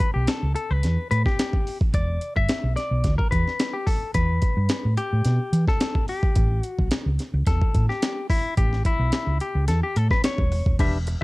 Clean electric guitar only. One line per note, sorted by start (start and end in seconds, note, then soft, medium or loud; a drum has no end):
0.00 0.13 B4 medium
0.14 0.28 G4 medium
0.28 0.54 A4 loud
0.55 0.71 A4 medium
0.71 1.10 B4 loud
1.11 1.25 B4 medium
1.26 1.77 G4 medium
1.94 2.34 D5 loud
2.37 2.74 E5 loud
2.76 3.18 D5 loud
3.18 3.30 A#4 loud
3.31 3.75 B4 loud
3.73 3.87 G4 medium
3.87 4.14 A4 medium
4.14 4.94 B4 loud
4.98 5.68 G4 loud
5.68 6.09 A4 loud
6.09 6.63 G4 medium
6.63 6.88 F#4 medium
7.47 7.86 A4 medium
7.89 8.29 G4 medium
8.30 8.56 E4 medium
8.57 8.86 G4 loud
8.86 9.41 E4 medium
9.41 9.67 G4 medium
9.68 9.83 A4 medium
9.83 9.97 G4 loud
9.97 10.11 A4 loud
10.11 10.24 B4 loud
10.25 10.76 C#5 loud
10.79 10.97 D4 medium
10.79 10.97 G4 medium
10.79 10.97 B4 medium
10.79 10.97 E5 loud
11.07 muted clean electric guitar stroke soft